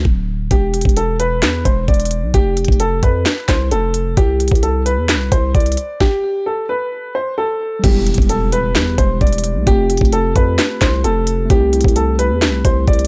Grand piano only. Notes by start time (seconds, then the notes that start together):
0.51 G4
0.97 A4
1.20 B4
1.65 C5
1.88 D5
2.34 G4
2.80 A4
3.03 B4
3.49 C5
3.72 A4
4.17 G4
4.63 A4
4.86 B4
5.32 C5
5.55 D5
6.01 G4
6.46 A4
6.69 B4
7.15 C5
7.38 A4
7.84 G4
8.30 A4
8.53 B4
8.98 C5
9.21 D5
9.67 G4
10.13 A4
10.36 B4
10.82 C5
11.04 A4
11.50 G4
11.96 A4
12.19 B4
12.65 C5
12.88 D5